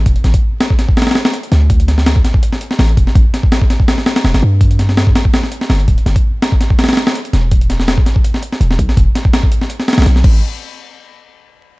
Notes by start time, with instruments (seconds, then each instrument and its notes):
0.06 808-style bass E1, kick, closed hi-hat
0.16 closed hi-hat
0.24 808-style bass A1, snare, closed hi-hat
0.34 kick, closed hi-hat
0.61 snare, closed hi-hat
0.70 kick
0.79 snare, closed hi-hat
0.89 kick
0.97 snare, closed hi-hat
1.02 snare, closed hi-hat
1.07 snare, closed hi-hat
1.11 snare, closed hi-hat
1.15 snare, closed hi-hat
1.25 snare
1.33 closed hi-hat
1.43 closed hi-hat
1.52 808-style bass D2, snare, closed hi-hat
1.70 kick, closed hi-hat
1.80 closed hi-hat
1.88 snare, closed hi-hat
1.98 snare
2.06 snare, closed hi-hat
2.16 kick
2.25 snare, closed hi-hat
2.34 kick
2.43 closed hi-hat
2.53 snare
2.61 closed hi-hat
2.71 snare
2.79 808-style bass A1, snare, open hi-hat
2.89 closed hi-hat
2.97 808-style bass E1, kick, closed hi-hat
3.07 snare
3.15 808-style bass A1, kick, closed hi-hat
3.34 snare, closed hi-hat
3.43 kick
3.52 snare, closed hi-hat
3.62 kick
3.70 snare, closed hi-hat
3.80 kick
3.88 snare, closed hi-hat
3.98 snare
4.06 snare, closed hi-hat
4.16 snare, closed hi-hat
4.25 808-style bass E1, snare, closed hi-hat
4.34 808-style bass G1, snare, closed hi-hat
4.43 808-style bass G2
4.61 kick, closed hi-hat
4.71 closed hi-hat
4.79 snare, closed hi-hat
4.89 snare
4.97 snare, closed hi-hat
5.07 kick
5.15 snare, closed hi-hat
5.25 kick
5.34 snare, closed hi-hat
5.43 snare
5.52 closed hi-hat
5.61 snare
5.70 808-style bass G1, snare, open hi-hat
5.80 closed hi-hat
5.88 808-style bass D1, kick, closed hi-hat
5.98 closed hi-hat
6.06 808-style bass G1, snare, closed hi-hat
6.16 kick, closed hi-hat
6.42 snare, closed hi-hat
6.52 kick
6.61 snare, closed hi-hat
6.70 kick
6.79 snare, closed hi-hat
6.84 snare, closed hi-hat
6.89 snare, closed hi-hat
6.93 snare, closed hi-hat
6.97 snare, closed hi-hat
7.07 snare
7.15 closed hi-hat
7.25 closed hi-hat
7.33 808-style bass E1, snare, closed hi-hat
7.51 kick, closed hi-hat
7.61 closed hi-hat
7.70 snare, closed hi-hat
7.80 snare
7.88 snare, closed hi-hat
7.98 kick
8.06 snare, closed hi-hat
8.16 kick
8.24 closed hi-hat
8.34 snare
8.43 closed hi-hat
8.52 snare
8.61 808-style bass E1, closed hi-hat
8.71 snare
8.79 808-style bass B1, kick, closed hi-hat
8.89 snare
8.97 808-style bass E1, kick, closed hi-hat
9.15 snare, closed hi-hat
9.25 kick
9.33 snare, closed hi-hat
9.43 kick
9.52 closed hi-hat
9.61 snare
9.70 closed hi-hat
9.80 snare
9.88 snare, closed hi-hat
9.93 snare, closed hi-hat
9.98 808-style bass B1, snare, closed hi-hat
10.02 snare, closed hi-hat
10.06 808-style bass B1, snare, closed hi-hat
10.16 snare
10.24 808-style bass A1, kick, crash